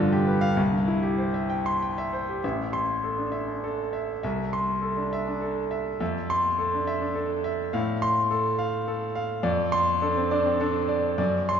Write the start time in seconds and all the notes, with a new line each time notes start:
Already playing: G2 D3 F4
0.12 G4
0.27 B4
0.41 F5
0.57 C2
0.71 G2
0.88 E4
1.02 G4
1.18 C5
1.34 E5
1.50 G5
1.66 C6
1.82 G5
1.98 E5
2.13 C5
2.29 G4
2.44 A1 E5
2.73 C6
3.04 A4
3.19 D4
3.32 E5
3.48 D4
3.64 A4
3.93 E5
4.23 C2 E5
4.53 C6
4.82 A4
4.97 D4
5.13 E5
5.27 D4
5.42 A4
5.71 E5
6.00 F2 E5
6.30 C6
6.58 A4
6.74 D4
6.87 E5
7.01 D4
7.15 A4
7.44 E5
7.73 A2 F5
8.02 C6
8.31 A4
8.59 F5
8.88 A4
9.15 F5
9.43 F2 D5
9.72 C6
10.01 D4 A4
10.17 C4
10.31 D4 D5
10.45 C4
10.60 D4 A4
10.88 D5
11.18 F#2 D5
11.49 C6